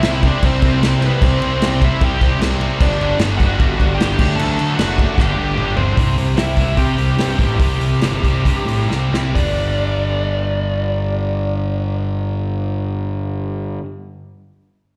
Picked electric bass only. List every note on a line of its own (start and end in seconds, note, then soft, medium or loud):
0.03 0.32 C2 medium
0.43 0.57 C2 loud
0.63 0.77 C2 medium
0.82 1.10 C2 loud
1.22 1.36 C2 loud
1.42 1.56 C2 loud
1.62 1.90 C2 medium
2.01 2.16 C2 loud
2.22 2.36 C2 medium
2.42 2.70 C2 loud
2.81 2.95 G1 loud
3.00 3.14 G1 medium
3.19 3.48 G1 medium
3.60 3.74 G1 loud
3.80 3.94 G1 medium
4.01 4.14 G1 medium
4.19 4.33 D2 medium
4.39 4.53 D2 loud
4.61 4.74 D2 loud
4.79 5.07 F#1 medium
5.18 5.32 G1 loud
5.38 5.52 G1 medium
5.59 5.98 G1 medium
5.98 6.15 C2 loud
6.17 6.34 C2 medium
6.37 6.54 C2 medium
6.57 6.74 C2 loud
6.77 6.95 C3 loud
6.98 7.15 C2 loud
7.18 7.35 G2 medium
7.39 7.56 A1 medium
7.60 7.78 C2 loud
7.81 7.99 C2 medium
8.02 8.20 G1 medium
8.24 8.43 C2 medium
8.45 8.64 G2 medium
8.65 8.85 A2 medium
8.89 9.09 C2 medium
9.12 9.32 C2 medium
9.35 13.78 G1 medium